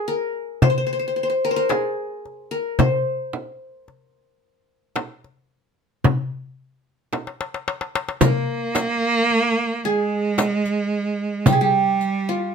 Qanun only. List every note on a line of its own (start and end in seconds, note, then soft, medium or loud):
0.00 1.02 G#4 medium
0.08 1.21 A#4 medium
0.63 0.70 C5 medium
0.70 0.77 C5 medium
0.78 0.86 C5 medium
0.87 0.92 C5 medium
0.93 0.99 C5 medium
0.99 1.07 C5 medium
1.08 1.16 C5 medium
1.16 1.23 C5 soft
1.23 1.29 C5 medium
1.30 1.51 C5 medium
1.45 1.56 A#4 medium
1.51 2.56 C5 medium
1.56 2.51 A#4 medium
1.69 2.91 G#4 medium
2.51 3.64 A#4 medium
2.79 7.09 C5 medium
8.22 9.89 A#4 medium
9.85 11.52 G#4 medium
11.46 11.58 G4 medium
11.52 11.67 G#4 medium
11.61 12.55 G4 medium
12.29 12.55 F4 medium